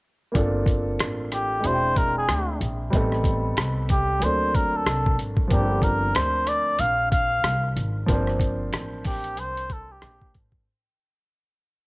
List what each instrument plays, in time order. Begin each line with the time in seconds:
0.32 upright bass G1, upright piano A#3 C4 D4, kick, closed hi-hat
0.37 upright piano F4 A4
0.66 kick, closed hi-hat
0.99 upright bass A1, cross-stick, closed hi-hat
1.32 muted trumpet G4, cross-stick, closed hi-hat
1.60 upright piano G#3 C4 D4, closed hi-hat
1.65 upright bass E1, upright piano E4 F#4, muted trumpet C5
1.73 upright piano G5
1.96 muted trumpet A#4, kick, closed hi-hat
2.18 muted trumpet G#4
2.29 upright bass D2, cross-stick, closed hi-hat
2.61 upright bass A#1, closed hi-hat
2.90 upright bass A1, upright piano G3 B3 C4, kick, closed hi-hat
2.95 upright piano D#4 A4
3.12 cross-stick
3.24 kick, closed hi-hat
3.57 upright bass C2, cross-stick, closed hi-hat
3.89 muted trumpet G4, kick, closed hi-hat
4.19 upright bass D2, upright piano F#3 A#3 C4, closed hi-hat
4.24 upright piano D4 A4, muted trumpet C5
4.54 muted trumpet A#4, kick, closed hi-hat
4.76 muted trumpet A4
4.86 upright bass C2, cross-stick, closed hi-hat
5.06 kick
5.19 upright bass G#1, closed hi-hat
5.37 kick
5.48 upright bass G1, upright piano F3 A#3 C4, kick, closed hi-hat
5.53 upright piano D4 A#4, muted trumpet G4
5.82 muted trumpet A#4, kick, closed hi-hat
6.15 upright bass D2, muted trumpet C5, cross-stick, closed hi-hat
6.47 muted trumpet D5, cross-stick, closed hi-hat
6.79 upright bass A#1, muted trumpet F5, closed hi-hat
7.12 muted trumpet F5, kick, closed hi-hat
7.44 upright bass C2, cross-stick, closed hi-hat
7.76 upright bass G#1, closed hi-hat
8.06 upright bass G1, upright piano F3 A#3 C4, kick, closed hi-hat
8.11 upright piano D4 C5
8.27 cross-stick
8.39 kick, closed hi-hat
8.72 upright bass A1, cross-stick, closed hi-hat
9.04 muted trumpet G4, kick, open hi-hat
9.24 closed hi-hat
9.37 upright bass C2, muted trumpet C5, closed hi-hat
9.57 closed hi-hat
9.70 muted trumpet A4, kick, closed hi-hat
9.92 muted trumpet G4
10.02 upright bass A#1, cross-stick, closed hi-hat
10.22 kick
10.35 upright bass G#1, kick, closed hi-hat
10.52 kick